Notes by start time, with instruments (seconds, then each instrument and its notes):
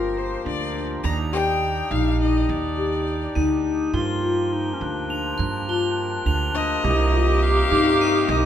Already playing: upright bass G1, harmonium F3 A#3 G4, marimba F4, violin A#4, crotales C7
0.17 violin C5
0.45 upright bass D2, marimba D4, violin D5
0.75 marimba D4
1.04 upright bass D#2, harmonium D4 D#4, violin A#5, crotales F7
1.32 marimba G4, violin G5
1.91 upright bass A#1, marimba D#4, violin F5
2.20 marimba D#4, violin D#5
2.49 upright bass D#2, violin D5
2.77 marimba G4
3.35 upright bass D2, marimba D#4, crotales D#7
3.65 marimba D#4
3.93 upright bass G2, harmonium F3 A#3, clarinet F4, crotales G7
4.22 marimba F4
4.53 clarinet D#4
4.73 clarinet C#4
4.80 upright bass D2, marimba D4, clarinet D4
5.10 marimba D4, crotales F7
5.38 upright bass G2, crotales C8
5.68 marimba F4, crotales G7
6.26 upright bass D2, marimba D4, crotales F7
6.54 marimba D4, violin D#5
6.84 upright bass C2, harmonium C3 D#4, clarinet G4
7.13 marimba F4
7.42 violin F5
7.71 upright bass G2, marimba D#4
8.00 marimba D#4, crotales D#7
8.29 upright bass C2, violin D#5